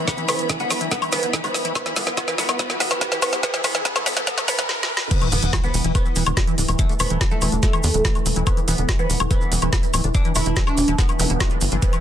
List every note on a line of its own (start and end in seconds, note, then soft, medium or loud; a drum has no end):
0.00 5.10 E3 medium
0.00 4.69 B3 medium
0.00 4.69 E4 medium
0.00 4.69 E5 medium
0.00 4.69 B5 medium
0.00 riser medium
0.08 0.11 E3 medium
0.08 0.20 B3 medium
0.08 kick loud
0.08 snare medium
0.08 closed hi-hat medium
0.08 maracas medium
0.17 0.26 E3 loud
0.17 closed hi-hat soft
0.17 maracas soft
0.28 0.34 D3 medium
0.28 0.47 B3 medium
0.28 snare medium
0.28 open hi-hat loud
0.28 high woodblock medium
0.28 maracas medium
0.39 0.42 E3 medium
0.39 closed hi-hat medium
0.39 maracas soft
0.49 0.57 E3 loud
0.49 kick loud
0.49 snare medium
0.49 closed hi-hat medium
0.49 maracas soft
0.59 0.65 D3 medium
0.59 0.79 B3 medium
0.59 closed hi-hat soft
0.59 maracas soft
0.70 0.74 E3 medium
0.70 snare medium
0.70 open hi-hat medium
0.70 high woodblock soft
0.70 maracas medium
0.80 0.89 E3 loud
0.80 closed hi-hat medium
0.80 maracas soft
0.91 0.95 E3 medium
0.91 1.04 B3 loud
0.91 kick loud
0.91 snare medium
0.91 closed hi-hat medium
0.91 maracas soft
1.02 1.10 E3 loud
1.02 closed hi-hat soft
1.02 high woodblock medium
1.02 maracas soft
1.12 1.18 D3 medium
1.12 1.31 B3 medium
1.12 snare medium
1.12 open hi-hat loud
1.12 maracas medium
1.23 1.26 E3 medium
1.23 closed hi-hat medium
1.23 maracas soft
1.33 1.41 E3 loud
1.33 kick loud
1.33 snare medium
1.33 closed hi-hat medium
1.33 maracas medium
1.44 1.49 D3 medium
1.44 1.63 B3 medium
1.44 closed hi-hat soft
1.44 high woodblock soft
1.44 maracas soft
1.54 1.57 E3 medium
1.54 snare medium
1.54 open hi-hat medium
1.54 maracas medium
1.64 1.73 E3 loud
1.64 closed hi-hat medium
1.64 maracas soft
1.75 1.88 B3 medium
1.75 kick loud
1.75 snare medium
1.75 closed hi-hat medium
1.75 high woodblock medium
1.75 maracas soft
1.86 1.94 E3 loud
1.86 snare medium
1.86 closed hi-hat soft
1.86 maracas soft
1.96 2.02 D3 medium
1.96 2.15 B3 medium
1.96 snare medium
1.96 open hi-hat loud
1.96 maracas medium
2.06 2.10 E3 medium
2.06 snare medium
2.06 closed hi-hat medium
2.06 maracas soft
2.17 2.20 E3 medium
2.17 2.30 B3 loud
2.17 kick loud
2.17 snare medium
2.17 closed hi-hat medium
2.17 high woodblock soft
2.17 maracas medium
2.28 2.36 E3 loud
2.28 snare medium
2.28 closed hi-hat soft
2.28 maracas soft
2.38 2.43 D3 medium
2.38 2.57 B3 medium
2.38 snare medium
2.38 open hi-hat medium
2.38 maracas medium
2.49 2.52 E3 medium
2.49 snare medium
2.49 closed hi-hat medium
2.49 high woodblock medium
2.49 maracas soft
2.59 2.62 E3 medium
2.59 2.72 B3 loud
2.59 kick loud
2.59 snare loud
2.59 closed hi-hat medium
2.59 maracas soft
2.70 2.78 E3 loud
2.70 snare medium
2.70 closed hi-hat soft
2.70 maracas soft
2.80 2.85 D3 medium
2.80 2.99 B3 loud
2.80 snare loud
2.80 open hi-hat loud
2.80 maracas medium
2.91 2.94 E3 medium
2.91 snare medium
2.91 closed hi-hat medium
2.91 high woodblock soft
2.91 maracas soft
3.01 3.04 E3 medium
3.01 3.14 B3 loud
3.01 kick loud
3.01 snare loud
3.01 closed hi-hat medium
3.01 maracas medium
3.12 3.19 E3 loud
3.12 snare medium
3.12 closed hi-hat soft
3.12 maracas soft
3.22 3.27 D3 medium
3.22 3.41 B3 medium
3.22 snare loud
3.22 open hi-hat medium
3.22 high woodblock medium
3.22 maracas loud
3.32 3.36 E3 medium
3.32 snare medium
3.32 closed hi-hat medium
3.32 maracas soft
3.43 3.46 E3 medium
3.43 3.56 B3 loud
3.43 kick loud
3.43 snare loud
3.43 closed hi-hat medium
3.43 maracas soft
3.54 3.61 E3 loud
3.54 snare medium
3.54 closed hi-hat soft
3.54 maracas soft
3.64 3.67 E3 medium
3.64 3.77 B3 loud
3.64 snare loud
3.64 open hi-hat loud
3.64 high woodblock soft
3.64 maracas medium
3.74 3.82 E3 loud
3.74 snare medium
3.74 closed hi-hat medium
3.74 maracas soft
3.85 3.98 B3 loud
3.85 kick loud
3.85 snare loud
3.85 closed hi-hat medium
3.85 maracas medium
3.96 4.03 E3 loud
3.96 snare medium
3.96 closed hi-hat soft
3.96 high woodblock medium
3.96 maracas soft
4.06 4.09 E3 medium
4.06 4.19 B3 loud
4.06 snare loud
4.06 open hi-hat medium
4.06 maracas medium
4.16 4.24 E3 loud
4.16 snare medium
4.16 closed hi-hat medium
4.16 maracas soft
4.27 4.40 B3 loud
4.27 kick loud
4.27 snare loud
4.27 closed hi-hat medium
4.27 maracas medium
4.37 4.45 E3 loud
4.37 snare medium
4.37 closed hi-hat soft
4.37 high woodblock soft
4.37 maracas soft
4.48 4.51 E3 medium
4.48 4.61 B3 loud
4.48 snare loud
4.48 open hi-hat loud
4.48 maracas medium
4.58 4.66 E3 loud
4.58 snare loud
4.58 closed hi-hat medium
4.58 maracas soft
4.69 snare medium
4.83 snare medium
4.97 snare loud
5.11 5.14 E3 medium
5.11 12.00 E3 medium
5.11 5.24 B3 loud
5.11 kick loud
5.11 closed hi-hat medium
5.11 crash loud
5.11 sub drop medium
5.11 maracas soft
5.21 5.29 E3 loud
5.21 closed hi-hat soft
5.21 high woodblock soft
5.21 maracas soft
5.32 5.40 E1 medium
5.32 5.37 D3 medium
5.32 5.51 B3 loud
5.32 open hi-hat loud
5.32 maracas medium
5.43 5.50 E1 medium
5.43 5.46 E3 medium
5.43 closed hi-hat medium
5.43 maracas soft
5.53 5.61 E3 loud
5.53 kick loud
5.53 snare loud
5.53 closed hi-hat medium
5.53 high woodblock medium
5.53 maracas medium
5.64 5.69 D3 medium
5.64 5.82 B3 loud
5.64 maracas soft
5.74 5.82 E1 loud
5.74 5.77 E3 medium
5.74 open hi-hat medium
5.74 maracas medium
5.84 5.92 E1 medium
5.84 5.92 E3 loud
5.84 closed hi-hat medium
5.84 maracas soft
5.95 6.00 D3 medium
5.95 6.71 B3 medium
5.95 kick loud
5.95 closed hi-hat medium
5.95 high woodblock soft
5.95 maracas medium
6.05 6.09 E3 medium
6.05 maracas soft
6.16 6.23 E1 loud
6.16 6.24 E3 loud
6.16 open hi-hat loud
6.16 maracas loud
6.26 6.34 E1 medium
6.26 6.32 D3 medium
6.26 closed hi-hat medium
6.26 high woodblock medium
6.26 maracas soft
6.37 6.40 E3 medium
6.37 kick loud
6.37 snare loud
6.37 closed hi-hat medium
6.37 maracas medium
6.47 6.55 E3 loud
6.47 closed hi-hat soft
6.47 maracas soft
6.58 6.65 D1 medium
6.58 6.63 D3 medium
6.58 open hi-hat loud
6.58 maracas medium
6.68 6.76 E1 medium
6.68 6.71 E3 medium
6.68 closed hi-hat medium
6.68 high woodblock soft
6.68 maracas soft
6.79 6.87 E3 loud
6.79 6.91 A3 loud
6.79 kick loud
6.79 closed hi-hat medium
6.79 maracas medium
6.89 6.95 D3 medium
6.89 closed hi-hat soft
6.89 maracas soft
6.99 7.07 E1 loud
6.99 7.03 E3 medium
6.99 7.19 B3 loud
6.99 open hi-hat loud
6.99 high woodblock medium
6.99 maracas loud
7.10 7.18 E1 medium
7.10 7.18 E3 loud
7.10 closed hi-hat medium
7.10 maracas soft
7.21 7.26 D3 medium
7.21 kick loud
7.21 snare loud
7.21 closed hi-hat medium
7.21 maracas medium
7.31 7.34 E3 medium
7.31 7.50 A3 loud
7.31 maracas soft
7.41 7.49 E1 loud
7.41 7.50 E3 loud
7.41 open hi-hat loud
7.41 high woodblock soft
7.41 maracas loud
7.52 7.60 E1 medium
7.52 7.57 D3 medium
7.52 closed hi-hat medium
7.52 maracas soft
7.62 7.66 E3 medium
7.62 8.38 A3 loud
7.62 kick loud
7.62 snare medium
7.62 closed hi-hat medium
7.62 maracas soft
7.73 7.81 E3 loud
7.73 closed hi-hat soft
7.73 high woodblock medium
7.73 maracas soft
7.83 7.91 E2 loud
7.83 7.89 D3 medium
7.83 open hi-hat loud
7.83 maracas loud
7.94 8.02 E1 medium
7.94 7.97 E3 medium
7.94 closed hi-hat medium
7.94 maracas soft
8.05 8.12 E3 loud
8.05 kick loud
8.05 snare loud
8.05 closed hi-hat medium
8.05 maracas medium
8.15 8.20 D3 medium
8.15 closed hi-hat soft
8.15 high woodblock soft
8.15 maracas soft
8.26 8.33 E1 medium
8.26 8.29 E3 medium
8.26 open hi-hat loud
8.26 maracas loud
8.36 8.44 E1 medium
8.36 8.44 E3 loud
8.36 closed hi-hat medium
8.36 maracas soft
8.46 8.52 D3 medium
8.46 8.59 B3 loud
8.46 kick loud
8.46 closed hi-hat medium
8.46 high woodblock medium
8.46 maracas medium
8.57 8.60 E3 medium
8.57 closed hi-hat soft
8.57 maracas soft
8.68 8.75 E1 medium
8.68 8.75 E3 loud
8.68 8.86 B3 medium
8.68 open hi-hat loud
8.68 maracas loud
8.78 8.86 E1 medium
8.78 8.83 D3 medium
8.78 closed hi-hat medium
8.78 maracas soft
8.89 8.92 E3 medium
8.89 kick loud
8.89 snare loud
8.89 closed hi-hat medium
8.89 high woodblock soft
8.89 maracas medium
8.99 9.07 E3 loud
8.99 9.18 B3 loud
8.99 maracas soft
9.10 9.17 E1 loud
9.10 9.15 D3 medium
9.10 open hi-hat loud
9.10 maracas medium
9.20 9.28 E1 medium
9.20 9.23 E3 medium
9.20 closed hi-hat medium
9.20 high woodblock medium
9.20 maracas soft
9.31 9.38 E3 loud
9.31 10.06 B3 loud
9.31 kick loud
9.31 closed hi-hat medium
9.31 maracas medium
9.41 9.46 D3 medium
9.41 maracas soft
9.52 9.59 E1 loud
9.52 9.55 E3 medium
9.52 open hi-hat loud
9.52 maracas loud
9.62 9.70 E1 medium
9.62 9.70 E3 loud
9.62 closed hi-hat medium
9.62 high woodblock soft
9.62 maracas soft
9.73 9.78 D3 medium
9.73 kick loud
9.73 snare loud
9.73 closed hi-hat medium
9.73 maracas medium
9.83 9.86 E3 medium
9.83 closed hi-hat soft
9.83 maracas soft
9.94 10.01 D1 loud
9.94 10.01 E3 loud
9.94 open hi-hat loud
9.94 high woodblock medium
9.94 maracas loud
10.03 10.12 E1 medium
10.03 10.09 D3 medium
10.03 closed hi-hat medium
10.03 maracas soft
10.14 10.18 E3 medium
10.14 10.27 D4 loud
10.14 kick loud
10.14 closed hi-hat medium
10.14 maracas medium
10.25 10.33 E3 loud
10.25 closed hi-hat soft
10.25 maracas soft
10.35 10.43 E1 medium
10.35 10.41 D3 medium
10.35 10.54 E4 medium
10.35 open hi-hat loud
10.35 high woodblock soft
10.35 maracas medium
10.46 10.54 E1 medium
10.46 10.49 E3 medium
10.46 closed hi-hat medium
10.46 maracas soft
10.56 10.64 E3 loud
10.56 kick loud
10.56 snare loud
10.56 closed hi-hat medium
10.56 maracas medium
10.67 10.72 D3 medium
10.67 10.86 D4 loud
10.67 high woodblock medium
10.67 maracas soft
10.77 10.85 E1 loud
10.77 10.81 E3 medium
10.77 open hi-hat loud
10.77 maracas medium
10.87 10.95 E1 medium
10.87 10.96 E3 loud
10.87 closed hi-hat medium
10.87 maracas soft
10.98 11.04 D3 medium
10.98 11.74 B3 medium
10.98 kick loud
10.98 snare medium
10.98 closed hi-hat medium
10.98 maracas medium
11.09 11.12 E3 medium
11.09 closed hi-hat soft
11.09 high woodblock soft
11.09 maracas soft
11.19 11.27 E1 loud
11.19 11.25 E3 medium
11.19 open hi-hat loud
11.19 zap medium
11.19 maracas loud
11.30 11.37 E1 medium
11.30 11.33 E3 medium
11.30 closed hi-hat medium
11.30 maracas soft
11.40 11.46 F3 medium
11.40 kick loud
11.40 snare loud
11.40 closed hi-hat medium
11.40 high woodblock medium
11.40 maracas medium
11.50 11.59 D3 medium
11.50 closed hi-hat soft
11.50 maracas soft
11.61 11.69 G1 medium
11.61 11.64 F3 medium
11.61 open hi-hat loud
11.61 maracas loud
11.71 11.79 G1 medium
11.71 11.77 F3 medium
11.71 closed hi-hat medium
11.71 maracas soft
11.82 11.85 E3 medium
11.82 11.95 B3 loud
11.82 kick loud
11.82 closed hi-hat medium
11.82 maracas medium
11.93 12.00 E3 medium
11.93 closed hi-hat soft
11.93 high woodblock soft
11.93 maracas soft